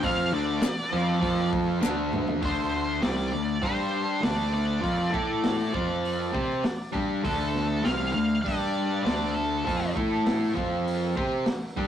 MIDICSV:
0, 0, Header, 1, 7, 480
1, 0, Start_track
1, 0, Key_signature, -1, "minor"
1, 0, Tempo, 601202
1, 30, Time_signature, 4, 2, 24, 8
1, 9479, End_track
2, 0, Start_track
2, 0, Title_t, "Lead electric guitar"
2, 0, Program_c, 0, 29
2, 29, Note_on_c, 0, 77, 100
2, 261, Note_off_c, 0, 77, 0
2, 270, Note_on_c, 0, 74, 102
2, 1196, Note_off_c, 0, 74, 0
2, 1954, Note_on_c, 0, 72, 84
2, 2420, Note_on_c, 0, 74, 97
2, 2441, Note_off_c, 0, 72, 0
2, 2914, Note_off_c, 0, 74, 0
2, 2914, Note_on_c, 0, 72, 104
2, 3383, Note_on_c, 0, 74, 97
2, 3400, Note_off_c, 0, 72, 0
2, 3614, Note_off_c, 0, 74, 0
2, 3624, Note_on_c, 0, 74, 89
2, 5511, Note_off_c, 0, 74, 0
2, 5786, Note_on_c, 0, 69, 93
2, 6266, Note_on_c, 0, 77, 108
2, 6279, Note_off_c, 0, 69, 0
2, 6476, Note_off_c, 0, 77, 0
2, 6485, Note_on_c, 0, 77, 99
2, 6723, Note_off_c, 0, 77, 0
2, 6726, Note_on_c, 0, 74, 99
2, 7199, Note_off_c, 0, 74, 0
2, 7209, Note_on_c, 0, 74, 79
2, 7459, Note_on_c, 0, 69, 75
2, 7465, Note_off_c, 0, 74, 0
2, 7912, Note_off_c, 0, 69, 0
2, 9479, End_track
3, 0, Start_track
3, 0, Title_t, "Distorted electric guitar"
3, 0, Program_c, 1, 30
3, 14, Note_on_c, 1, 53, 105
3, 21, Note_on_c, 1, 60, 110
3, 30, Note_on_c, 1, 65, 97
3, 253, Note_off_c, 1, 53, 0
3, 256, Note_off_c, 1, 60, 0
3, 258, Note_on_c, 1, 50, 91
3, 260, Note_on_c, 1, 57, 104
3, 262, Note_off_c, 1, 65, 0
3, 266, Note_on_c, 1, 62, 101
3, 477, Note_off_c, 1, 50, 0
3, 496, Note_off_c, 1, 57, 0
3, 499, Note_off_c, 1, 62, 0
3, 736, Note_on_c, 1, 60, 98
3, 737, Note_on_c, 1, 53, 89
3, 741, Note_on_c, 1, 65, 113
3, 948, Note_off_c, 1, 53, 0
3, 958, Note_on_c, 1, 53, 87
3, 963, Note_off_c, 1, 60, 0
3, 965, Note_off_c, 1, 65, 0
3, 973, Note_on_c, 1, 60, 108
3, 974, Note_on_c, 1, 65, 99
3, 1438, Note_off_c, 1, 53, 0
3, 1441, Note_on_c, 1, 50, 83
3, 1444, Note_off_c, 1, 60, 0
3, 1447, Note_off_c, 1, 65, 0
3, 1447, Note_on_c, 1, 57, 100
3, 1450, Note_on_c, 1, 62, 101
3, 1918, Note_off_c, 1, 50, 0
3, 1923, Note_off_c, 1, 62, 0
3, 1925, Note_off_c, 1, 57, 0
3, 1928, Note_on_c, 1, 50, 91
3, 1933, Note_on_c, 1, 62, 104
3, 1934, Note_on_c, 1, 57, 102
3, 2403, Note_off_c, 1, 50, 0
3, 2406, Note_on_c, 1, 48, 91
3, 2409, Note_off_c, 1, 57, 0
3, 2409, Note_off_c, 1, 62, 0
3, 2412, Note_on_c, 1, 55, 89
3, 2413, Note_on_c, 1, 60, 111
3, 2646, Note_off_c, 1, 48, 0
3, 2649, Note_off_c, 1, 55, 0
3, 2649, Note_off_c, 1, 60, 0
3, 2651, Note_on_c, 1, 50, 59
3, 2656, Note_on_c, 1, 57, 72
3, 2847, Note_off_c, 1, 50, 0
3, 2850, Note_off_c, 1, 57, 0
3, 2885, Note_on_c, 1, 55, 84
3, 2887, Note_on_c, 1, 62, 95
3, 2897, Note_on_c, 1, 67, 110
3, 3357, Note_on_c, 1, 50, 81
3, 3359, Note_off_c, 1, 62, 0
3, 3360, Note_off_c, 1, 55, 0
3, 3364, Note_on_c, 1, 57, 105
3, 3369, Note_on_c, 1, 62, 100
3, 3371, Note_off_c, 1, 67, 0
3, 3839, Note_off_c, 1, 50, 0
3, 3839, Note_off_c, 1, 57, 0
3, 3842, Note_on_c, 1, 53, 96
3, 3842, Note_on_c, 1, 60, 94
3, 3847, Note_off_c, 1, 62, 0
3, 3853, Note_on_c, 1, 65, 96
3, 4081, Note_off_c, 1, 60, 0
3, 4083, Note_off_c, 1, 53, 0
3, 4085, Note_on_c, 1, 57, 105
3, 4088, Note_off_c, 1, 65, 0
3, 4092, Note_on_c, 1, 64, 88
3, 4095, Note_on_c, 1, 69, 106
3, 4565, Note_off_c, 1, 57, 0
3, 4568, Note_off_c, 1, 64, 0
3, 4570, Note_off_c, 1, 69, 0
3, 4575, Note_on_c, 1, 53, 87
3, 4582, Note_on_c, 1, 60, 98
3, 4585, Note_on_c, 1, 65, 97
3, 5036, Note_off_c, 1, 60, 0
3, 5046, Note_on_c, 1, 60, 84
3, 5051, Note_off_c, 1, 53, 0
3, 5053, Note_off_c, 1, 65, 0
3, 5057, Note_on_c, 1, 67, 89
3, 5063, Note_on_c, 1, 72, 105
3, 5286, Note_off_c, 1, 60, 0
3, 5291, Note_off_c, 1, 67, 0
3, 5294, Note_off_c, 1, 72, 0
3, 5527, Note_on_c, 1, 55, 91
3, 5531, Note_on_c, 1, 62, 94
3, 5538, Note_on_c, 1, 67, 109
3, 5767, Note_off_c, 1, 55, 0
3, 5769, Note_off_c, 1, 62, 0
3, 5769, Note_on_c, 1, 50, 102
3, 5773, Note_off_c, 1, 67, 0
3, 5781, Note_on_c, 1, 57, 97
3, 5784, Note_on_c, 1, 62, 96
3, 6249, Note_off_c, 1, 50, 0
3, 6255, Note_off_c, 1, 57, 0
3, 6256, Note_off_c, 1, 62, 0
3, 6258, Note_on_c, 1, 48, 93
3, 6263, Note_on_c, 1, 55, 102
3, 6268, Note_on_c, 1, 60, 111
3, 6493, Note_off_c, 1, 48, 0
3, 6494, Note_off_c, 1, 55, 0
3, 6497, Note_on_c, 1, 57, 77
3, 6498, Note_off_c, 1, 60, 0
3, 6498, Note_on_c, 1, 50, 62
3, 6692, Note_off_c, 1, 57, 0
3, 6693, Note_off_c, 1, 50, 0
3, 6740, Note_on_c, 1, 55, 98
3, 6747, Note_on_c, 1, 62, 97
3, 6755, Note_on_c, 1, 67, 98
3, 7215, Note_off_c, 1, 55, 0
3, 7217, Note_on_c, 1, 50, 90
3, 7219, Note_off_c, 1, 62, 0
3, 7223, Note_off_c, 1, 67, 0
3, 7225, Note_on_c, 1, 57, 93
3, 7232, Note_on_c, 1, 62, 99
3, 7695, Note_off_c, 1, 50, 0
3, 7699, Note_off_c, 1, 57, 0
3, 7701, Note_on_c, 1, 53, 89
3, 7702, Note_off_c, 1, 62, 0
3, 7704, Note_on_c, 1, 60, 98
3, 7711, Note_on_c, 1, 65, 96
3, 7934, Note_off_c, 1, 60, 0
3, 7937, Note_off_c, 1, 53, 0
3, 7937, Note_on_c, 1, 57, 94
3, 7942, Note_off_c, 1, 65, 0
3, 7948, Note_on_c, 1, 64, 94
3, 7955, Note_on_c, 1, 69, 106
3, 8413, Note_on_c, 1, 53, 86
3, 8416, Note_off_c, 1, 57, 0
3, 8422, Note_off_c, 1, 64, 0
3, 8422, Note_on_c, 1, 60, 101
3, 8426, Note_off_c, 1, 69, 0
3, 8430, Note_on_c, 1, 65, 94
3, 8896, Note_off_c, 1, 53, 0
3, 8900, Note_off_c, 1, 60, 0
3, 8904, Note_off_c, 1, 65, 0
3, 8912, Note_on_c, 1, 60, 84
3, 8916, Note_on_c, 1, 67, 106
3, 8918, Note_on_c, 1, 72, 111
3, 9145, Note_off_c, 1, 60, 0
3, 9147, Note_off_c, 1, 67, 0
3, 9148, Note_off_c, 1, 72, 0
3, 9394, Note_on_c, 1, 55, 98
3, 9404, Note_on_c, 1, 62, 91
3, 9408, Note_on_c, 1, 67, 95
3, 9479, Note_off_c, 1, 55, 0
3, 9479, Note_off_c, 1, 62, 0
3, 9479, Note_off_c, 1, 67, 0
3, 9479, End_track
4, 0, Start_track
4, 0, Title_t, "Picked electric bass"
4, 0, Program_c, 2, 34
4, 25, Note_on_c, 2, 41, 103
4, 249, Note_off_c, 2, 41, 0
4, 269, Note_on_c, 2, 38, 98
4, 491, Note_off_c, 2, 38, 0
4, 742, Note_on_c, 2, 41, 112
4, 966, Note_off_c, 2, 41, 0
4, 983, Note_on_c, 2, 41, 92
4, 1430, Note_off_c, 2, 41, 0
4, 1474, Note_on_c, 2, 38, 86
4, 1915, Note_off_c, 2, 38, 0
4, 1943, Note_on_c, 2, 38, 94
4, 2389, Note_off_c, 2, 38, 0
4, 2432, Note_on_c, 2, 36, 103
4, 2649, Note_off_c, 2, 36, 0
4, 2662, Note_on_c, 2, 38, 84
4, 2884, Note_off_c, 2, 38, 0
4, 2894, Note_on_c, 2, 43, 88
4, 3344, Note_off_c, 2, 43, 0
4, 3399, Note_on_c, 2, 38, 88
4, 3837, Note_off_c, 2, 38, 0
4, 3863, Note_on_c, 2, 41, 93
4, 4084, Note_off_c, 2, 41, 0
4, 4107, Note_on_c, 2, 45, 92
4, 4551, Note_off_c, 2, 45, 0
4, 4587, Note_on_c, 2, 41, 98
4, 5032, Note_off_c, 2, 41, 0
4, 5069, Note_on_c, 2, 48, 97
4, 5288, Note_off_c, 2, 48, 0
4, 5545, Note_on_c, 2, 43, 97
4, 5767, Note_off_c, 2, 43, 0
4, 5788, Note_on_c, 2, 38, 95
4, 6234, Note_off_c, 2, 38, 0
4, 6262, Note_on_c, 2, 36, 98
4, 6485, Note_off_c, 2, 36, 0
4, 6499, Note_on_c, 2, 38, 81
4, 6725, Note_off_c, 2, 38, 0
4, 6755, Note_on_c, 2, 43, 100
4, 7199, Note_off_c, 2, 43, 0
4, 7224, Note_on_c, 2, 38, 92
4, 7674, Note_off_c, 2, 38, 0
4, 7721, Note_on_c, 2, 41, 92
4, 7938, Note_off_c, 2, 41, 0
4, 7961, Note_on_c, 2, 45, 98
4, 8404, Note_off_c, 2, 45, 0
4, 8442, Note_on_c, 2, 41, 90
4, 8885, Note_off_c, 2, 41, 0
4, 8928, Note_on_c, 2, 48, 89
4, 9144, Note_off_c, 2, 48, 0
4, 9395, Note_on_c, 2, 43, 91
4, 9479, Note_off_c, 2, 43, 0
4, 9479, End_track
5, 0, Start_track
5, 0, Title_t, "Muted distorted electric guitar strokes"
5, 487, Note_on_c, 9, 29, 67
5, 567, Note_off_c, 9, 29, 0
5, 5298, Note_on_c, 9, 29, 54
5, 5378, Note_off_c, 9, 29, 0
5, 9156, Note_on_c, 9, 29, 52
5, 9236, Note_off_c, 9, 29, 0
5, 9479, End_track
6, 0, Start_track
6, 0, Title_t, "Muted picked electric bass strokes"
6, 498, Note_on_c, 9, 29, 45
6, 578, Note_off_c, 9, 29, 0
6, 5308, Note_on_c, 9, 29, 36
6, 5388, Note_off_c, 9, 29, 0
6, 9154, Note_on_c, 9, 29, 40
6, 9234, Note_off_c, 9, 29, 0
6, 9479, End_track
7, 0, Start_track
7, 0, Title_t, "Drums"
7, 24, Note_on_c, 9, 46, 67
7, 27, Note_on_c, 9, 36, 104
7, 104, Note_off_c, 9, 46, 0
7, 107, Note_off_c, 9, 36, 0
7, 494, Note_on_c, 9, 38, 123
7, 497, Note_on_c, 9, 46, 64
7, 508, Note_on_c, 9, 39, 105
7, 573, Note_off_c, 9, 38, 0
7, 577, Note_off_c, 9, 46, 0
7, 587, Note_off_c, 9, 39, 0
7, 977, Note_on_c, 9, 46, 54
7, 979, Note_on_c, 9, 36, 82
7, 1057, Note_off_c, 9, 46, 0
7, 1059, Note_off_c, 9, 36, 0
7, 1220, Note_on_c, 9, 36, 90
7, 1300, Note_off_c, 9, 36, 0
7, 1456, Note_on_c, 9, 38, 71
7, 1466, Note_on_c, 9, 39, 88
7, 1536, Note_off_c, 9, 38, 0
7, 1546, Note_off_c, 9, 39, 0
7, 1700, Note_on_c, 9, 45, 87
7, 1780, Note_off_c, 9, 45, 0
7, 1816, Note_on_c, 9, 43, 77
7, 1896, Note_off_c, 9, 43, 0
7, 1936, Note_on_c, 9, 46, 59
7, 1938, Note_on_c, 9, 36, 104
7, 2016, Note_off_c, 9, 46, 0
7, 2018, Note_off_c, 9, 36, 0
7, 2416, Note_on_c, 9, 38, 113
7, 2419, Note_on_c, 9, 46, 61
7, 2496, Note_off_c, 9, 38, 0
7, 2499, Note_off_c, 9, 46, 0
7, 2892, Note_on_c, 9, 46, 53
7, 2898, Note_on_c, 9, 36, 96
7, 2971, Note_off_c, 9, 46, 0
7, 2978, Note_off_c, 9, 36, 0
7, 3379, Note_on_c, 9, 38, 103
7, 3383, Note_on_c, 9, 46, 58
7, 3459, Note_off_c, 9, 38, 0
7, 3463, Note_off_c, 9, 46, 0
7, 3861, Note_on_c, 9, 46, 54
7, 3862, Note_on_c, 9, 36, 100
7, 3941, Note_off_c, 9, 46, 0
7, 3942, Note_off_c, 9, 36, 0
7, 4104, Note_on_c, 9, 36, 110
7, 4184, Note_off_c, 9, 36, 0
7, 4342, Note_on_c, 9, 38, 114
7, 4345, Note_on_c, 9, 46, 57
7, 4422, Note_off_c, 9, 38, 0
7, 4425, Note_off_c, 9, 46, 0
7, 4586, Note_on_c, 9, 36, 105
7, 4666, Note_off_c, 9, 36, 0
7, 4830, Note_on_c, 9, 46, 60
7, 4910, Note_off_c, 9, 46, 0
7, 5067, Note_on_c, 9, 36, 106
7, 5147, Note_off_c, 9, 36, 0
7, 5302, Note_on_c, 9, 38, 95
7, 5305, Note_on_c, 9, 46, 53
7, 5382, Note_off_c, 9, 38, 0
7, 5385, Note_off_c, 9, 46, 0
7, 5545, Note_on_c, 9, 36, 104
7, 5625, Note_off_c, 9, 36, 0
7, 5786, Note_on_c, 9, 46, 60
7, 5787, Note_on_c, 9, 36, 106
7, 5866, Note_off_c, 9, 46, 0
7, 5867, Note_off_c, 9, 36, 0
7, 6032, Note_on_c, 9, 38, 34
7, 6112, Note_off_c, 9, 38, 0
7, 6272, Note_on_c, 9, 38, 115
7, 6275, Note_on_c, 9, 46, 68
7, 6351, Note_off_c, 9, 38, 0
7, 6355, Note_off_c, 9, 46, 0
7, 6756, Note_on_c, 9, 36, 105
7, 6770, Note_on_c, 9, 46, 63
7, 6836, Note_off_c, 9, 36, 0
7, 6849, Note_off_c, 9, 46, 0
7, 7238, Note_on_c, 9, 38, 108
7, 7242, Note_on_c, 9, 46, 57
7, 7318, Note_off_c, 9, 38, 0
7, 7321, Note_off_c, 9, 46, 0
7, 7722, Note_on_c, 9, 36, 101
7, 7732, Note_on_c, 9, 46, 62
7, 7801, Note_off_c, 9, 36, 0
7, 7812, Note_off_c, 9, 46, 0
7, 7959, Note_on_c, 9, 36, 117
7, 8039, Note_off_c, 9, 36, 0
7, 8197, Note_on_c, 9, 38, 113
7, 8200, Note_on_c, 9, 46, 59
7, 8276, Note_off_c, 9, 38, 0
7, 8280, Note_off_c, 9, 46, 0
7, 8440, Note_on_c, 9, 36, 113
7, 8519, Note_off_c, 9, 36, 0
7, 8682, Note_on_c, 9, 46, 55
7, 8761, Note_off_c, 9, 46, 0
7, 8921, Note_on_c, 9, 36, 105
7, 9001, Note_off_c, 9, 36, 0
7, 9151, Note_on_c, 9, 38, 102
7, 9155, Note_on_c, 9, 46, 52
7, 9231, Note_off_c, 9, 38, 0
7, 9234, Note_off_c, 9, 46, 0
7, 9398, Note_on_c, 9, 36, 105
7, 9478, Note_off_c, 9, 36, 0
7, 9479, End_track
0, 0, End_of_file